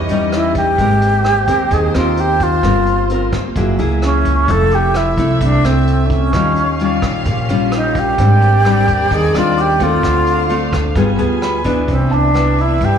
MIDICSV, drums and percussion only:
0, 0, Header, 1, 2, 480
1, 0, Start_track
1, 0, Tempo, 462606
1, 815, Time_signature, 4, 2, 24, 8
1, 13471, End_track
2, 0, Start_track
2, 0, Title_t, "Drums"
2, 86, Note_on_c, 9, 42, 42
2, 190, Note_off_c, 9, 42, 0
2, 334, Note_on_c, 9, 37, 60
2, 334, Note_on_c, 9, 42, 40
2, 438, Note_off_c, 9, 37, 0
2, 438, Note_off_c, 9, 42, 0
2, 569, Note_on_c, 9, 42, 38
2, 572, Note_on_c, 9, 36, 50
2, 673, Note_off_c, 9, 42, 0
2, 675, Note_off_c, 9, 36, 0
2, 812, Note_on_c, 9, 36, 46
2, 812, Note_on_c, 9, 42, 50
2, 915, Note_off_c, 9, 42, 0
2, 916, Note_off_c, 9, 36, 0
2, 1052, Note_on_c, 9, 42, 44
2, 1156, Note_off_c, 9, 42, 0
2, 1291, Note_on_c, 9, 37, 54
2, 1291, Note_on_c, 9, 42, 40
2, 1395, Note_off_c, 9, 37, 0
2, 1395, Note_off_c, 9, 42, 0
2, 1529, Note_on_c, 9, 42, 39
2, 1532, Note_on_c, 9, 36, 54
2, 1633, Note_off_c, 9, 42, 0
2, 1636, Note_off_c, 9, 36, 0
2, 1773, Note_on_c, 9, 36, 44
2, 1775, Note_on_c, 9, 42, 52
2, 1877, Note_off_c, 9, 36, 0
2, 1879, Note_off_c, 9, 42, 0
2, 2017, Note_on_c, 9, 37, 56
2, 2017, Note_on_c, 9, 42, 38
2, 2121, Note_off_c, 9, 37, 0
2, 2121, Note_off_c, 9, 42, 0
2, 2251, Note_on_c, 9, 42, 40
2, 2354, Note_off_c, 9, 42, 0
2, 2492, Note_on_c, 9, 36, 52
2, 2493, Note_on_c, 9, 42, 40
2, 2596, Note_off_c, 9, 36, 0
2, 2597, Note_off_c, 9, 42, 0
2, 2729, Note_on_c, 9, 37, 44
2, 2729, Note_on_c, 9, 42, 42
2, 2731, Note_on_c, 9, 36, 49
2, 2833, Note_off_c, 9, 37, 0
2, 2833, Note_off_c, 9, 42, 0
2, 2835, Note_off_c, 9, 36, 0
2, 2971, Note_on_c, 9, 42, 36
2, 3075, Note_off_c, 9, 42, 0
2, 3211, Note_on_c, 9, 42, 44
2, 3315, Note_off_c, 9, 42, 0
2, 3450, Note_on_c, 9, 37, 54
2, 3450, Note_on_c, 9, 42, 41
2, 3451, Note_on_c, 9, 36, 53
2, 3554, Note_off_c, 9, 37, 0
2, 3554, Note_off_c, 9, 42, 0
2, 3555, Note_off_c, 9, 36, 0
2, 3691, Note_on_c, 9, 36, 54
2, 3692, Note_on_c, 9, 42, 47
2, 3795, Note_off_c, 9, 36, 0
2, 3796, Note_off_c, 9, 42, 0
2, 3937, Note_on_c, 9, 42, 42
2, 4041, Note_off_c, 9, 42, 0
2, 4173, Note_on_c, 9, 37, 59
2, 4173, Note_on_c, 9, 42, 41
2, 4276, Note_off_c, 9, 37, 0
2, 4276, Note_off_c, 9, 42, 0
2, 4410, Note_on_c, 9, 42, 40
2, 4412, Note_on_c, 9, 36, 46
2, 4514, Note_off_c, 9, 42, 0
2, 4516, Note_off_c, 9, 36, 0
2, 4651, Note_on_c, 9, 36, 51
2, 4652, Note_on_c, 9, 42, 57
2, 4755, Note_off_c, 9, 36, 0
2, 4756, Note_off_c, 9, 42, 0
2, 4888, Note_on_c, 9, 42, 42
2, 4992, Note_off_c, 9, 42, 0
2, 5128, Note_on_c, 9, 37, 57
2, 5128, Note_on_c, 9, 42, 44
2, 5232, Note_off_c, 9, 37, 0
2, 5232, Note_off_c, 9, 42, 0
2, 5369, Note_on_c, 9, 42, 40
2, 5370, Note_on_c, 9, 36, 49
2, 5473, Note_off_c, 9, 42, 0
2, 5474, Note_off_c, 9, 36, 0
2, 5611, Note_on_c, 9, 36, 51
2, 5611, Note_on_c, 9, 42, 51
2, 5715, Note_off_c, 9, 36, 0
2, 5715, Note_off_c, 9, 42, 0
2, 5856, Note_on_c, 9, 37, 57
2, 5856, Note_on_c, 9, 42, 41
2, 5960, Note_off_c, 9, 37, 0
2, 5960, Note_off_c, 9, 42, 0
2, 6094, Note_on_c, 9, 42, 43
2, 6198, Note_off_c, 9, 42, 0
2, 6327, Note_on_c, 9, 42, 36
2, 6329, Note_on_c, 9, 36, 50
2, 6431, Note_off_c, 9, 42, 0
2, 6433, Note_off_c, 9, 36, 0
2, 6567, Note_on_c, 9, 37, 56
2, 6567, Note_on_c, 9, 42, 50
2, 6568, Note_on_c, 9, 36, 49
2, 6670, Note_off_c, 9, 37, 0
2, 6670, Note_off_c, 9, 42, 0
2, 6671, Note_off_c, 9, 36, 0
2, 6806, Note_on_c, 9, 42, 38
2, 6909, Note_off_c, 9, 42, 0
2, 7045, Note_on_c, 9, 42, 39
2, 7149, Note_off_c, 9, 42, 0
2, 7284, Note_on_c, 9, 37, 50
2, 7284, Note_on_c, 9, 42, 35
2, 7288, Note_on_c, 9, 36, 53
2, 7388, Note_off_c, 9, 37, 0
2, 7388, Note_off_c, 9, 42, 0
2, 7392, Note_off_c, 9, 36, 0
2, 7526, Note_on_c, 9, 42, 47
2, 7529, Note_on_c, 9, 36, 52
2, 7630, Note_off_c, 9, 42, 0
2, 7632, Note_off_c, 9, 36, 0
2, 7772, Note_on_c, 9, 42, 42
2, 7876, Note_off_c, 9, 42, 0
2, 8007, Note_on_c, 9, 37, 65
2, 8007, Note_on_c, 9, 42, 43
2, 8111, Note_off_c, 9, 37, 0
2, 8111, Note_off_c, 9, 42, 0
2, 8249, Note_on_c, 9, 42, 42
2, 8250, Note_on_c, 9, 36, 52
2, 8353, Note_off_c, 9, 42, 0
2, 8354, Note_off_c, 9, 36, 0
2, 8489, Note_on_c, 9, 42, 50
2, 8491, Note_on_c, 9, 36, 52
2, 8592, Note_off_c, 9, 42, 0
2, 8594, Note_off_c, 9, 36, 0
2, 8734, Note_on_c, 9, 42, 41
2, 8838, Note_off_c, 9, 42, 0
2, 8973, Note_on_c, 9, 37, 51
2, 8973, Note_on_c, 9, 42, 44
2, 9077, Note_off_c, 9, 37, 0
2, 9077, Note_off_c, 9, 42, 0
2, 9212, Note_on_c, 9, 36, 51
2, 9212, Note_on_c, 9, 42, 43
2, 9316, Note_off_c, 9, 36, 0
2, 9316, Note_off_c, 9, 42, 0
2, 9453, Note_on_c, 9, 36, 55
2, 9457, Note_on_c, 9, 42, 49
2, 9557, Note_off_c, 9, 36, 0
2, 9560, Note_off_c, 9, 42, 0
2, 9699, Note_on_c, 9, 37, 60
2, 9699, Note_on_c, 9, 42, 42
2, 9803, Note_off_c, 9, 37, 0
2, 9803, Note_off_c, 9, 42, 0
2, 9935, Note_on_c, 9, 42, 44
2, 10039, Note_off_c, 9, 42, 0
2, 10170, Note_on_c, 9, 36, 47
2, 10172, Note_on_c, 9, 42, 36
2, 10274, Note_off_c, 9, 36, 0
2, 10276, Note_off_c, 9, 42, 0
2, 10410, Note_on_c, 9, 36, 48
2, 10413, Note_on_c, 9, 37, 47
2, 10413, Note_on_c, 9, 42, 47
2, 10514, Note_off_c, 9, 36, 0
2, 10516, Note_off_c, 9, 37, 0
2, 10516, Note_off_c, 9, 42, 0
2, 10651, Note_on_c, 9, 42, 38
2, 10754, Note_off_c, 9, 42, 0
2, 10894, Note_on_c, 9, 42, 38
2, 10998, Note_off_c, 9, 42, 0
2, 11129, Note_on_c, 9, 36, 51
2, 11132, Note_on_c, 9, 37, 61
2, 11132, Note_on_c, 9, 42, 43
2, 11233, Note_off_c, 9, 36, 0
2, 11236, Note_off_c, 9, 37, 0
2, 11236, Note_off_c, 9, 42, 0
2, 11365, Note_on_c, 9, 42, 43
2, 11367, Note_on_c, 9, 36, 54
2, 11468, Note_off_c, 9, 42, 0
2, 11471, Note_off_c, 9, 36, 0
2, 11609, Note_on_c, 9, 42, 36
2, 11713, Note_off_c, 9, 42, 0
2, 11848, Note_on_c, 9, 37, 61
2, 11848, Note_on_c, 9, 42, 41
2, 11952, Note_off_c, 9, 37, 0
2, 11952, Note_off_c, 9, 42, 0
2, 12090, Note_on_c, 9, 36, 48
2, 12092, Note_on_c, 9, 42, 37
2, 12193, Note_off_c, 9, 36, 0
2, 12195, Note_off_c, 9, 42, 0
2, 12329, Note_on_c, 9, 36, 46
2, 12333, Note_on_c, 9, 42, 38
2, 12433, Note_off_c, 9, 36, 0
2, 12437, Note_off_c, 9, 42, 0
2, 12575, Note_on_c, 9, 42, 24
2, 12678, Note_off_c, 9, 42, 0
2, 12815, Note_on_c, 9, 37, 54
2, 12815, Note_on_c, 9, 42, 43
2, 12919, Note_off_c, 9, 37, 0
2, 12919, Note_off_c, 9, 42, 0
2, 13055, Note_on_c, 9, 42, 25
2, 13159, Note_off_c, 9, 42, 0
2, 13291, Note_on_c, 9, 36, 47
2, 13293, Note_on_c, 9, 42, 39
2, 13395, Note_off_c, 9, 36, 0
2, 13397, Note_off_c, 9, 42, 0
2, 13471, End_track
0, 0, End_of_file